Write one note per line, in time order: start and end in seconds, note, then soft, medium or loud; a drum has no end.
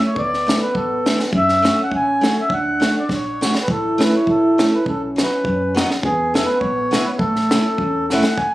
0.00 0.17 A3 medium
0.07 0.18 C#5 medium
0.15 0.54 D2 medium
0.15 1.33 B3 medium
0.15 0.60 D5 loud
0.15 kick medium
0.34 snare soft
0.47 0.59 A3 medium
0.47 0.60 D4 medium
0.47 0.60 E4 medium
0.47 snare medium
0.47 hi-hat pedal soft
0.62 0.75 B4 medium
0.75 1.13 A1 medium
0.75 1.17 A4 medium
0.75 kick medium
1.06 1.18 A3 medium
1.06 1.19 D4 medium
1.06 1.19 E4 medium
1.06 snare medium
1.06 hi-hat pedal soft
1.20 snare medium
1.32 1.71 F#2 medium
1.32 2.52 C#4 loud
1.32 kick medium
1.37 1.82 E5 loud
1.49 snare soft
1.62 1.76 A3 medium
1.62 1.76 C#4 medium
1.62 1.77 F#4 medium
1.62 snare medium
1.62 hi-hat pedal soft
1.83 1.93 F#5 medium
1.91 2.30 A1 medium
1.91 kick medium
1.96 2.41 G#5 loud
2.21 2.34 A3 medium
2.21 2.35 C#4 medium
2.21 2.36 F#4 medium
2.21 snare medium
2.21 hi-hat pedal soft
2.41 2.53 E5 medium
2.49 2.88 D2 medium
2.49 3.42 D4 medium
2.49 2.94 F#5 loud
2.49 kick medium
2.80 2.93 A3 medium
2.80 2.94 D4 medium
2.80 2.94 F#4 medium
2.80 snare medium
2.80 hi-hat pedal soft
2.99 3.10 D5 medium
3.09 3.47 A#1 medium
3.09 kick medium
3.09 snare soft
3.14 3.54 C#5 medium
3.41 3.53 A3 medium
3.41 3.54 D4 soft
3.41 3.54 F#4 medium
3.41 snare medium
3.41 hi-hat pedal soft
3.55 snare medium
3.62 3.68 B4 medium
3.68 4.06 A1 loud
3.68 4.87 E4 loud
3.68 4.03 A4 medium
3.68 kick medium
3.98 4.11 A3 medium
3.98 4.12 C#4 medium
3.98 4.12 E4 medium
3.98 snare medium
3.98 hi-hat pedal soft
4.03 4.15 B4 medium
4.16 4.29 C#5 medium
4.27 4.65 A1 medium
4.27 4.75 A4 medium
4.27 kick medium
4.58 4.71 A3 medium
4.58 4.71 C#4 medium
4.58 4.72 E4 medium
4.58 snare medium
4.58 hi-hat pedal soft
4.74 4.86 B4 medium
4.86 5.24 B1 loud
4.86 6.06 C#4 medium
4.86 5.02 A4 medium
4.86 kick medium
5.16 5.29 F#3 medium
5.16 5.30 B3 medium
5.16 5.30 D#4 medium
5.16 snare medium
5.16 hi-hat pedal soft
5.23 5.75 B4 medium
5.44 5.82 F#2 loud
5.44 kick medium
5.75 5.87 F#3 medium
5.75 5.88 B3 medium
5.75 5.89 D#4 medium
5.75 snare medium
5.75 hi-hat pedal soft
5.91 snare medium
6.03 6.41 E2 loud
6.03 7.20 B3 medium
6.03 6.33 G#4 loud
6.03 kick medium
6.34 6.46 G#3 medium
6.34 6.47 B3 medium
6.34 6.47 E4 medium
6.34 6.48 A4 medium
6.34 snare medium
6.34 hi-hat pedal soft
6.46 6.59 B4 medium
6.60 6.99 A#1 loud
6.60 7.07 C#5 medium
6.60 kick medium
6.91 7.04 G#3 medium
6.91 7.04 B3 medium
6.91 7.05 E4 medium
6.91 snare medium
6.91 hi-hat pedal soft
7.05 7.11 B4 medium
7.18 7.58 A1 loud
7.18 7.75 A3 medium
7.18 8.06 A4 medium
7.18 kick medium
7.36 snare soft
7.51 7.64 A3 medium
7.51 7.64 C#4 medium
7.51 7.65 E4 medium
7.51 snare medium
7.51 hi-hat pedal medium
7.78 8.16 E2 medium
7.78 8.13 C#4 medium
7.78 kick medium
8.10 8.23 A3 medium
8.10 8.38 A3 medium
8.10 8.23 C#4 medium
8.10 8.24 E4 medium
8.10 8.39 F#5 medium
8.10 snare soft
8.10 hi-hat pedal soft
8.24 snare medium
8.37 8.52 G#5 loud
8.37 kick medium